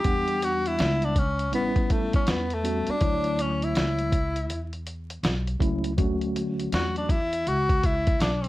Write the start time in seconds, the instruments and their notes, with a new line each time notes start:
Already playing: tenor saxophone G4
0.04 upright bass E2, tine electric piano G3 B3 D4 F#5, kick, closed hi-hat
0.28 closed hi-hat
0.42 tenor saxophone F#4, closed hi-hat
0.66 tenor saxophone E4, closed hi-hat
0.79 upright bass C#2, snare, closed hi-hat
1.02 tenor saxophone D4, closed hi-hat
1.16 tenor saxophone C#4, kick, closed hi-hat
1.39 closed hi-hat
1.52 upright bass A1, tine electric piano G3 B3 C#4 E4, tenor saxophone B3, closed hi-hat
1.76 kick, closed hi-hat
1.90 tenor saxophone A3, kick, closed hi-hat
2.13 tenor saxophone C#4, kick, closed hi-hat
2.27 upright bass E2, tenor saxophone B3, snare, closed hi-hat
2.50 tenor saxophone A3, closed hi-hat
2.64 tine electric piano G3 B3 C#4 F#4, closed hi-hat
2.87 tenor saxophone D4, muted upright bass stroke, closed hi-hat
3.00 upright bass D2, tine electric piano F#3 A3 E4 C#5, kick, closed hi-hat
3.24 closed hi-hat
3.39 tenor saxophone C#4, closed hi-hat
3.62 tenor saxophone E4, closed hi-hat
3.75 upright bass C#2, snare, closed hi-hat
3.99 closed hi-hat
4.12 kick, closed hi-hat
4.36 closed hi-hat
4.50 upright bass E2, closed hi-hat
4.73 closed hi-hat
4.87 closed hi-hat
5.10 closed hi-hat
5.23 upright bass B1, snare, closed hi-hat
5.47 closed hi-hat
5.59 upright bass C#2, tine electric piano F#3 A3 C#4 E4, kick, closed hi-hat
5.84 closed hi-hat
5.97 upright bass D2, tine electric piano F#3 A3 C#4 F#4, kick, closed hi-hat
6.21 closed hi-hat
6.36 closed hi-hat
6.60 closed hi-hat
6.72 upright bass E2, tenor saxophone F#4, snare, closed hi-hat
6.96 tenor saxophone D4, closed hi-hat
7.09 tenor saxophone E4, kick, closed hi-hat
7.33 closed hi-hat
7.47 upright bass C#2, tenor saxophone F#4, closed hi-hat
7.69 kick, closed hi-hat
7.84 tenor saxophone E4, kick, closed hi-hat
8.07 kick, closed hi-hat
8.20 upright bass B1, tenor saxophone D4, snare, closed hi-hat
8.44 closed hi-hat